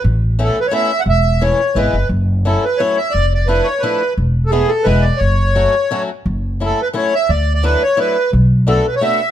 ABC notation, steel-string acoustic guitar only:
X:1
M:3/4
L:1/8
Q:1/4=174
K:F#m
V:1 name="Steel-string acoustic guitar"
z2 [A,B,CE] z [A,B,CE] z | z2 [E,A,CE] z [E,G,B,E] z | z2 [F,A,CE] z [F,A,CE] z | z2 [=F,A,DE] z [F,A,DE] z |
z2 [E,A,B,E] z [E,G,B,E] z | z2 [F,A,CF] z [F,A,CF] z | z2 [F,A,CE] z [F,A,CE] z | z2 [F,A,DE] z [F,A,DE] z |
z2 [A,B,DF] z [A,B,DF] z |]